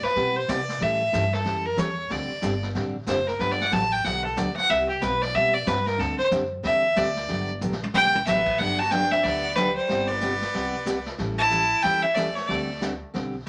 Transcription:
0.03 B4, muted upright bass stroke, snare
0.16 B2 C3 G3 B3 E4 G4, brush sweep, snare
0.36 C5
0.48 C3 G3 B3 E4 G4 D5, snare, hi-hat pedal
0.69 snare
0.80 A2 E3 G3 C#4 E4 A4 E5, brush sweep, snare
1.12 G2 E3 G3 C#4 E4 A4, snare, hi-hat pedal
1.33 A4, snare
1.45 F#2 E3 G3 C#4 E4 A4, brush sweep, snare
1.66 A#4
1.77 E2 E3 G3 C#4 E4 A4 C#5, snare, hi-hat pedal
2.10 D2 D3 G3 C4 D4 G4 D5, brush sweep, snare
2.30 muted upright bass stroke
2.42 G1 D3 G3 C4 D4 G4, snare, hi-hat pedal
2.62 snare
2.75 A1 D3 G3 C4 D4 G4, brush sweep, snare
3.06 F#1 D3 G3 C4 D4 G4 C5, snare, hi-hat pedal
3.27 A#4, snare
3.39 G1 D3 F#3 B3 D4 G4 B4, brush sweep, snare
3.50 D5, snare
3.61 F#5, snare
3.72 A1 D3 F#3 B3 D4 G4 A5, snare, hi-hat pedal
3.92 G5
4.04 B1 D3 F#3 B3 D4 G4 F#5, brush sweep, snare
4.25 A4
4.36 D2 D3 F#3 B3 D4 G4 D5, snare, hi-hat pedal
4.57 F#5, muted upright bass stroke, snare
4.69 C2 C3 G3 B3 E4 G4 E5, brush sweep, snare
4.89 G4
5.01 B1 C3 G3 B3 E4 G4 B4, snare, hi-hat pedal
5.22 D5, snare
5.34 B2 C3 G3 B3 E4 G4 E5, brush sweep, snare
5.54 D5
5.66 G2 C3 G3 B3 E4 G4 B4, snare, hi-hat pedal
5.86 A#4, snare
5.98 D2 D3 G3 C4 D4 G4 A4, brush sweep, snare
6.18 C5, muted upright bass stroke
6.31 F#2 D3 G3 C4 D4 G4, snare, hi-hat pedal
6.63 E2 D3 G3 C4 D4 G4 E5, brush sweep, snare
6.96 D2 D3 G3 C4 D4 G4 D5, snare, hi-hat pedal
7.16 snare
7.29 G1 D3 F#3 B3 D4 G4, brush sweep, snare
7.61 A#1 D3 F#3 B3 D4 G4, hi-hat pedal
7.72 snare
7.83 high tom
7.94 B1 D3 F#3 B3 D4 G4 G5, high tom
8.04 high tom
8.15 high tom
8.26 A1 D3 F#3 B3 D4 G4 E5, snare, hi-hat pedal
8.46 kick, crash
8.58 G1 D3 F#3 B3 D4 G4 F#5, brush sweep, snare
8.79 F#4 A5
8.91 D3 F#3 B3 D4 G4 G5, snare, hi-hat pedal
9.11 C4 E5, snare
9.23 D2 D3 F#3 B3 D4 G4 D5, brush sweep, snare
9.56 D3 F#3 G3 B3 D4 G4 B4, snare, hi-hat pedal
9.76 G3 C5
9.89 G1 C3 G3 B3 E4 G4, brush sweep, snare
10.08 B3 D5
10.21 C3 G3 B3 E4 G4, snare, hi-hat pedal
10.41 snare
10.53 C2 C3 G3 B3 E4 G4, brush sweep, snare
10.86 C3 G3 B3 E4 G4, snare, hi-hat pedal
11.06 snare
11.18 A1 E3 G3 C#4 E4 A4, brush sweep, snare
11.38 E4 A5
11.50 E3 G3 C#4 E4 A4, snare, hi-hat pedal
11.83 E2 E3 G3 C#4 E4 A4 G5, brush sweep, snare
12.02 C#4 E5
12.15 E3 G3 A3 C#4 E4 A4 D5, snare, hi-hat pedal
12.35 A3 C#5, snare
12.47 D2 D3 G3 A3 C4 D4 G4 D5, brush sweep, snare
12.81 D3 G3 C4 D4 G4, snare, hi-hat pedal
13.14 B1 D3 G3 C4 D4 G4, brush sweep, snare

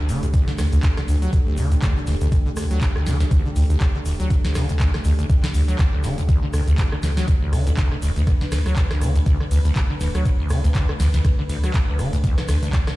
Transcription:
Already playing: A3 D4 G4
0.00 D2
0.09 D1 D3, open hi-hat, shaker
0.23 D2, closed hi-hat, shaker
0.33 D2, kick, closed hi-hat, shaker
0.48 D3, snare
0.58 D2, cross-stick, snare, open hi-hat, shaker
0.72 D2, closed hi-hat, shaker
0.83 D2, kick, clap, closed hi-hat, shaker
0.97 D3, cross-stick, snare
1.08 D2, open hi-hat, shaker
1.22 F#3, closed hi-hat, shaker
1.33 D2, kick, closed hi-hat, shaker
1.47 D2
1.57 D2 D3, open hi-hat, shaker
1.71 D2, closed hi-hat, shaker
1.82 D2, kick, clap, closed hi-hat, shaker
1.96 D3
2.07 D1 D2, snare, open hi-hat, shaker
2.21 D2, closed hi-hat, shaker
2.32 D2, kick, closed hi-hat, shaker
2.46 D3
2.56 D2, cross-stick, open hi-hat, shaker
2.70 D2 F#3, closed hi-hat, shaker
2.81 D2, kick, clap, closed hi-hat, shaker
2.96 D2, cross-stick
3.06 D2 D3, snare, open hi-hat, shaker
3.20 D2, snare, closed hi-hat, shaker
3.31 D2, kick, closed hi-hat, shaker
3.45 D3
3.56 D2, open hi-hat, shaker
3.70 D2, closed hi-hat, shaker
3.80 D2, kick, clap, closed hi-hat, shaker
3.95 D3
4.05 D1 D2, open hi-hat, shaker
4.20 D2 F#3, closed hi-hat, shaker
4.30 D2, kick, closed hi-hat, shaker
4.44 D2, snare
4.55 D2 D3, cross-stick, snare, open hi-hat, shaker
4.69 D2, closed hi-hat, shaker
4.80 D2, kick, clap, closed hi-hat, shaker
4.94 D3, cross-stick, snare
5.04 D2, open hi-hat, shaker
5.19 D2, closed hi-hat, shaker
5.30 D2, kick, closed hi-hat, shaker
5.43 D3, snare, clap
5.54 D2, open hi-hat, shaker
5.68 F#3, closed hi-hat, shaker
5.79 D2, kick, clap, closed hi-hat, shaker
5.93 D2
6.04 D1 D3, snare, open hi-hat, shaker
6.18 D2, closed hi-hat, shaker
6.28 D2, kick, closed hi-hat, shaker
6.43 D3
6.53 D2, cross-stick, open hi-hat, shaker
6.67 D2, closed hi-hat, shaker
6.78 D2, kick, clap, closed hi-hat, shaker
6.92 D3, cross-stick
7.03 D2, snare, open hi-hat, shaker
7.17 F#3, snare, closed hi-hat, shaker
7.28 D2 B4, kick, closed hi-hat, shaker
7.42 D2
7.53 D2 D3, cross-stick, open hi-hat, ride, shaker
7.67 D2, closed hi-hat, shaker
7.77 D2, kick, clap, closed hi-hat, shaker
7.92 D3, cross-stick
8.02 D1 D2, open hi-hat, ride, shaker
8.16 D2, closed hi-hat, shaker
8.27 D2, kick, cross-stick, closed hi-hat, shaker
8.41 D3, snare
8.52 D2, cross-stick, snare, open hi-hat, ride, shaker
8.66 D2 F#3, cross-stick, closed hi-hat, shaker
8.76 D2, kick, clap, closed hi-hat, shaker
8.91 D2, cross-stick, snare
9.01 D2 D3, cross-stick, open hi-hat, ride, shaker
9.15 D2, closed hi-hat, shaker
9.26 D2, kick, closed hi-hat, shaker
9.40 D3, cross-stick
9.51 D2, open hi-hat, ride, shaker
9.64 D2, closed hi-hat, shaker
9.76 D2, kick, cross-stick, clap, closed hi-hat, shaker
9.90 D3
10.00 D1 D2, snare, open hi-hat, ride, shaker
10.15 D2 F#3, cross-stick, closed hi-hat, shaker
10.25 D2, kick, closed hi-hat, shaker
10.40 D2
10.50 D2 D3, cross-stick, open hi-hat, ride, shaker
10.64 D2, closed hi-hat, shaker
10.75 D2, kick, clap, closed hi-hat, shaker
10.89 D3, cross-stick
11.00 D2, snare, open hi-hat, ride, shaker
11.13 D2, snare, closed hi-hat, shaker
11.24 D2, kick, cross-stick, closed hi-hat, shaker
11.39 D3
11.49 D2, open hi-hat, ride, shaker
11.63 F#3, cross-stick, closed hi-hat, shaker
11.74 D2, kick, clap, closed hi-hat, shaker
11.88 D2
11.99 D1 D3, cross-stick, open hi-hat, ride, shaker
12.13 D2, closed hi-hat, shaker
12.24 D2, kick, closed hi-hat, shaker
12.38 D3, cross-stick, snare
12.48 D2, cross-stick, snare, open hi-hat, ride, shaker
12.63 D2, closed hi-hat, shaker
12.73 D2, kick, cross-stick, clap, closed hi-hat, shaker
12.87 D3, cross-stick, snare

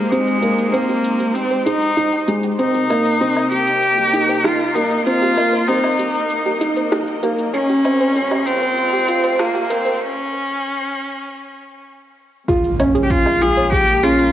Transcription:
Already playing: G#1 G#3 A#3 D#4 G4 C5
0.10 G#3 C4 G4, closed hi-hat
0.27 closed hi-hat
0.42 A#3 G4, closed hi-hat
0.58 closed hi-hat
0.72 A#3 C4 C5, closed hi-hat
0.89 G4, closed hi-hat
1.04 closed hi-hat
1.20 G4, closed hi-hat
1.34 C4, closed hi-hat
1.51 C5, closed hi-hat
1.65 D#4 G#4, closed hi-hat
1.82 closed hi-hat
1.97 D#4 D#5, closed hi-hat
2.13 G5, closed hi-hat
2.28 G#3 G4, closed hi-hat
2.43 G5, closed hi-hat
2.59 C2 C3 C4 D#4, closed hi-hat, riser
2.67 A#4
2.74 G4 D#5, closed hi-hat
2.85 A#3
2.90 A#3, closed hi-hat, low woodblock
3.05 C5, closed hi-hat
3.21 C4 G4, closed hi-hat
3.37 closed hi-hat, low woodblock
3.52 G4, closed hi-hat
3.67 closed hi-hat
3.83 closed hi-hat
3.98 G4, closed hi-hat
4.13 D#4, closed hi-hat
4.29 C5, closed hi-hat
4.44 D#4 F4 G4, cross-stick, closed hi-hat
4.60 closed hi-hat
4.74 A#3 D#4 G4, closed hi-hat
4.91 closed hi-hat
5.05 C4 F4, closed hi-hat
5.22 G4, closed hi-hat
5.37 A#3, closed hi-hat, low woodblock
5.53 C5, closed hi-hat
5.68 C4 D#4 G4, closed hi-hat
5.84 closed hi-hat, low woodblock
5.99 G4, closed hi-hat
6.15 closed hi-hat
6.30 closed hi-hat
6.46 G4, closed hi-hat
6.61 D#4, closed hi-hat
6.77 C5, closed hi-hat
6.92 D#4 G4, cross-stick, closed hi-hat
7.07 closed hi-hat
7.23 A#3 G4, closed hi-hat
7.39 closed hi-hat
7.54 C#3 C#4, closed hi-hat
7.69 G4, closed hi-hat
7.85 C4, closed hi-hat, low woodblock
8.00 C5, closed hi-hat
8.05 F4
8.16 C#4, closed hi-hat
8.31 G4, closed hi-hat, low woodblock
8.46 C4, closed hi-hat
8.62 C5, closed hi-hat
8.78 closed hi-hat
8.93 G4, closed hi-hat
9.08 F4, closed hi-hat
9.24 C5, closed hi-hat
9.39 A#3 F4, cross-stick, closed hi-hat
9.54 G4, closed hi-hat
9.70 A#3 C4, closed hi-hat
9.85 C5, closed hi-hat
10.01 C#4
12.48 A#1 A#3 F4 G#4, kick, closed hi-hat, impact
12.64 closed hi-hat
12.80 C#4 C#5, closed hi-hat, low woodblock
12.95 G#3 G#4, closed hi-hat
13.03 G4
13.10 F4, kick, closed hi-hat
13.26 G#4, closed hi-hat, low woodblock
13.41 F4 G#4 A#4, closed hi-hat
13.57 C#5, closed hi-hat
13.72 G4 G#4, kick, closed hi-hat
13.88 closed hi-hat
14.03 C#4 F4 G#4, closed hi-hat
14.19 closed hi-hat

